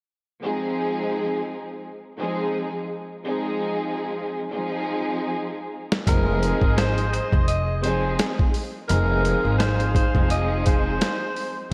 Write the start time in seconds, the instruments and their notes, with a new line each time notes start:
0.42 string section F3 G#3 C4 D#4 G#4
2.18 string section F3 G#3 C4 D#4 G#4
3.24 string section F3 G#3 C4 D#4 G#4
4.50 string section F3 G#3 C4 D#4 G#4
5.92 snare
6.07 upright bass F1, string section F3 G#3 C4 D#4 G#4, trumpet section G#4 C5 D#5, tenor saxophone A#4, kick, closed hi-hat
6.43 closed hi-hat
6.62 upright bass G#1, kick
6.77 tenor saxophone C5, cross-stick, snare, closed hi-hat
6.98 closed hi-hat
7.12 tenor saxophone C5, closed hi-hat
7.32 upright bass F1, kick
7.48 tenor saxophone D#5, closed hi-hat
7.83 string section F3 G#3 C4 D#4 G#4, tenor saxophone C5, closed hi-hat
8.19 cross-stick, snare, closed hi-hat
8.39 kick
8.54 open hi-hat
8.88 upright bass F1, string section F3 G#3 C4 D#4 G#4, trumpet section G#4 C5 F5, tenor saxophone A#4, closed hi-hat
9.25 closed hi-hat
9.45 upright bass G#1
9.58 tenor saxophone C5, cross-stick, snare, closed hi-hat
9.80 closed hi-hat
9.95 tenor saxophone C5, kick, closed hi-hat
10.14 upright bass F1, string section F3 G#3 C4 D#4 G#4, kick
10.30 tenor saxophone D#5, closed hi-hat
10.66 tenor saxophone C5, kick, closed hi-hat
11.01 cross-stick, snare, closed hi-hat
11.36 open hi-hat